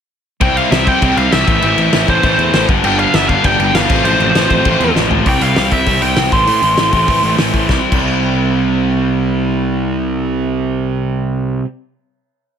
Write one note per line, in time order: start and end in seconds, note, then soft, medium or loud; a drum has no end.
0.41 0.62 C2 medium
0.41 0.70 C3 medium
0.41 0.70 G3 medium
0.41 0.71 C4 loud
0.41 0.71 E4 loud
0.41 0.57 G5 loud
0.41 kick loud
0.41 crash medium
0.57 0.71 F5 loud
0.57 crash medium
0.71 0.92 C2 loud
0.71 0.87 C3 medium
0.71 0.86 G3 medium
0.71 0.86 C4 loud
0.71 0.86 E4 medium
0.71 0.88 E5 medium
0.71 snare loud
0.71 crash medium
0.87 1.00 C3 medium
0.87 1.01 G3 medium
0.87 1.01 C4 medium
0.87 1.02 E4 medium
0.87 1.17 G5 loud
0.87 kick medium
0.87 crash medium
1.01 1.12 C2 medium
1.01 1.30 C3 medium
1.01 1.30 G3 medium
1.01 1.31 C4 loud
1.01 1.31 E4 loud
1.01 kick loud
1.01 crash medium
1.17 1.27 C2 medium
1.17 1.32 F5 loud
1.17 crash medium
1.32 1.43 C2 medium
1.32 1.46 C3 medium
1.32 1.46 G3 medium
1.32 1.47 C4 medium
1.32 1.47 E4 loud
1.32 1.47 E5 medium
1.32 snare loud
1.32 crash medium
1.47 1.58 A1 medium
1.47 1.62 A2 medium
1.47 1.61 E3 medium
1.47 1.61 A3 loud
1.47 1.61 C4 loud
1.47 1.60 E4 loud
1.47 2.04 E5 loud
1.47 kick loud
1.47 crash medium
1.61 1.73 A1 loud
1.61 1.93 A2 medium
1.61 1.92 E3 medium
1.61 1.92 A3 loud
1.61 1.91 C4 loud
1.61 1.91 E4 loud
1.61 crash medium
1.77 1.88 A1 medium
1.77 crash medium
1.92 2.03 A1 loud
1.92 2.06 A2 medium
1.92 2.07 E3 medium
1.92 2.07 A3 medium
1.92 2.08 C4 medium
1.92 2.08 E4 medium
1.92 snare loud
1.92 crash medium
2.08 2.19 A1 medium
2.08 2.23 A2 medium
2.08 2.22 E3 medium
2.08 2.22 A3 medium
2.08 2.21 C4 medium
2.08 2.21 E4 loud
2.08 2.66 C5 loud
2.08 kick medium
2.08 crash medium
2.22 2.34 A1 loud
2.22 2.54 A2 medium
2.22 2.53 E3 medium
2.22 2.53 A3 loud
2.22 2.52 C4 loud
2.22 2.52 E4 loud
2.22 kick loud
2.22 crash medium
2.38 2.49 E2 medium
2.38 crash medium
2.53 2.64 A1 medium
2.53 2.68 A2 medium
2.53 2.68 E3 medium
2.53 2.68 A3 medium
2.53 2.68 C4 loud
2.53 2.68 E4 loud
2.53 snare loud
2.53 crash medium
2.68 2.79 G1 medium
2.68 2.84 G2 loud
2.68 2.84 D3 loud
2.68 2.84 G3 loud
2.68 2.83 B3 loud
2.68 2.83 D4 loud
2.68 kick loud
2.68 crash medium
2.84 3.05 G1 loud
2.84 3.14 G2 medium
2.84 3.14 D3 medium
2.84 3.14 G3 medium
2.84 3.13 B3 loud
2.84 3.13 D4 loud
2.84 2.99 G5 loud
2.84 crash medium
2.99 3.15 F5 loud
2.99 crash medium
3.14 3.35 G1 medium
3.14 3.28 G2 medium
3.14 3.28 D3 medium
3.14 3.29 G3 medium
3.14 3.29 B3 medium
3.14 3.29 D4 medium
3.14 3.29 E5 medium
3.14 snare loud
3.14 crash medium
3.29 3.43 G2 medium
3.29 3.43 D3 medium
3.29 3.43 G3 medium
3.29 3.43 B3 medium
3.29 3.42 D4 medium
3.29 3.45 F5 loud
3.29 kick medium
3.29 crash medium
3.43 3.55 G1 medium
3.43 3.75 G2 medium
3.43 3.75 D3 medium
3.43 3.75 G3 medium
3.43 3.74 B3 loud
3.43 3.74 D4 loud
3.43 3.59 G5 loud
3.43 kick loud
3.43 crash medium
3.59 3.70 G1 medium
3.59 3.75 G5 medium
3.59 crash medium
3.74 3.84 G1 loud
3.74 3.89 G2 medium
3.74 3.89 D3 medium
3.74 3.89 G3 medium
3.74 3.89 B3 medium
3.74 3.89 D4 medium
3.74 4.05 F5 medium
3.74 snare loud
3.74 crash medium
3.89 4.00 A1 medium
3.89 4.03 F2 loud
3.89 4.06 A2 loud
3.89 4.03 C3 medium
3.89 4.05 F3 loud
3.89 4.05 A3 loud
3.89 4.04 C4 loud
3.89 4.04 F4 loud
3.89 kick loud
3.89 crash loud
4.04 4.14 A1 loud
4.04 4.34 F2 medium
4.04 4.36 A2 medium
4.04 4.34 C3 loud
4.04 4.36 F3 loud
4.04 4.35 A3 loud
4.04 4.35 C4 loud
4.04 4.34 F4 loud
4.04 4.91 C5 medium
4.04 crash medium
4.20 4.30 A1 medium
4.20 crash medium
4.35 4.45 A1 medium
4.35 4.48 F2 medium
4.35 4.49 A2 medium
4.35 4.49 C3 medium
4.35 4.50 F3 medium
4.35 4.50 A3 medium
4.35 4.51 C4 medium
4.35 4.51 F4 medium
4.35 snare loud
4.35 crash medium
4.50 4.60 A1 medium
4.50 4.65 F2 medium
4.50 4.66 A2 medium
4.50 4.65 C3 medium
4.50 4.65 F3 medium
4.50 4.65 A3 loud
4.50 4.65 C4 medium
4.50 4.65 F4 medium
4.50 kick medium
4.50 crash medium
4.65 4.76 A1 medium
4.65 4.95 F2 loud
4.65 4.96 A2 medium
4.65 4.94 C3 loud
4.65 4.95 F3 medium
4.65 4.95 A3 loud
4.65 4.94 C4 medium
4.65 4.94 F4 loud
4.65 kick loud
4.65 crash medium
4.80 4.91 E2 medium
4.80 crash medium
4.95 5.26 A1 medium
4.95 5.10 F2 medium
4.95 5.08 A2 medium
4.95 5.10 C3 medium
4.95 5.09 F3 medium
4.95 5.10 A3 medium
4.95 5.10 C4 medium
4.95 5.10 F4 medium
4.95 snare medium
5.10 5.25 F2 medium
5.10 5.24 A2 medium
5.10 5.25 C3 medium
5.10 5.25 F3 medium
5.10 5.25 A3 medium
5.10 5.25 C4 medium
5.10 5.25 F4 medium
5.10 floor tom medium
5.26 5.39 C2 medium
5.26 5.40 C3 medium
5.26 5.40 G3 medium
5.26 5.40 C4 loud
5.26 5.39 E4 loud
5.26 5.41 G5 medium
5.26 kick loud
5.26 open hi-hat medium
5.40 5.54 C2 medium
5.40 5.55 C3 medium
5.40 5.55 G3 medium
5.40 5.57 C4 medium
5.40 5.57 E4 medium
5.40 5.72 F5 medium
5.40 open hi-hat medium
5.56 5.69 C2 medium
5.56 5.70 C3 medium
5.56 5.70 G3 medium
5.56 5.70 C4 medium
5.56 5.70 E4 loud
5.56 snare loud
5.56 open hi-hat medium
5.71 5.84 C2 medium
5.71 5.85 C3 medium
5.71 5.86 G3 medium
5.71 5.87 C4 medium
5.71 5.87 E4 medium
5.71 6.02 E5 medium
5.71 kick medium
5.71 open hi-hat medium
5.86 5.99 C2 medium
5.86 6.02 C3 medium
5.86 6.01 G3 medium
5.86 6.02 C4 medium
5.86 6.01 E4 medium
5.86 kick medium
5.86 open hi-hat medium
6.01 6.15 C2 medium
6.01 6.16 C3 medium
6.01 6.16 G3 medium
6.01 6.17 C4 medium
6.01 6.18 E4 medium
6.01 6.31 G5 medium
6.01 open hi-hat medium
6.16 6.29 C2 medium
6.16 6.31 C3 medium
6.16 6.31 G3 loud
6.16 6.34 C4 loud
6.16 6.34 E4 medium
6.16 snare loud
6.16 open hi-hat medium
6.32 6.45 A1 medium
6.32 6.49 A2 loud
6.32 6.48 E3 loud
6.32 6.48 A3 loud
6.32 6.48 C4 medium
6.32 6.48 E4 loud
6.32 7.35 C6 loud
6.32 kick medium
6.32 open hi-hat medium
6.47 6.60 A2 medium
6.47 6.62 A2 medium
6.47 6.63 E3 medium
6.47 6.63 A3 loud
6.47 6.64 C4 loud
6.47 6.64 E4 loud
6.47 open hi-hat medium
6.62 6.75 A1 medium
6.62 6.78 A2 medium
6.62 6.78 E3 medium
6.62 6.78 A3 medium
6.62 6.77 C4 medium
6.62 6.77 E4 medium
6.62 open hi-hat medium
6.77 6.90 A1 medium
6.77 6.92 A2 medium
6.77 6.93 E3 medium
6.77 6.93 A3 medium
6.77 6.94 C4 loud
6.77 6.94 E4 loud
6.77 snare loud
6.77 open hi-hat medium
6.92 7.05 A1 medium
6.92 7.09 A2 medium
6.92 7.09 E3 medium
6.92 7.08 A3 medium
6.92 7.08 C4 medium
6.92 7.07 E4 medium
6.92 kick medium
6.92 open hi-hat medium
7.08 7.21 A1 medium
7.08 7.23 A2 medium
7.08 7.23 E3 medium
7.08 7.24 A3 medium
7.08 7.24 C4 medium
7.08 7.24 E4 medium
7.08 kick loud
7.08 open hi-hat medium
7.23 7.36 A1 medium
7.23 7.39 A2 medium
7.23 7.38 E3 medium
7.23 7.38 A3 medium
7.23 7.38 C4 medium
7.23 7.37 E4 medium
7.23 open hi-hat soft
7.38 7.51 A1 medium
7.38 7.52 A2 medium
7.38 7.53 E3 medium
7.38 7.53 A3 medium
7.38 7.54 C4 medium
7.38 7.54 E4 loud
7.38 snare loud
7.38 open hi-hat medium
7.53 7.67 A1 medium
7.53 7.68 A2 medium
7.53 7.67 E3 medium
7.53 7.69 A3 medium
7.53 7.69 C4 medium
7.53 7.69 E4 medium
7.53 kick medium
7.53 open hi-hat soft
7.68 7.78 C2 medium
7.68 7.91 C3 medium
7.68 7.92 G3 loud
7.68 7.93 C4 medium
7.68 kick loud
7.68 snare medium
7.72 7.95 E4 loud
7.91 11.60 C2 medium
7.91 11.64 C3 medium
7.91 11.65 G3 medium
7.91 11.65 C4 medium
7.91 kick loud
7.91 crash medium
7.95 11.66 E4 loud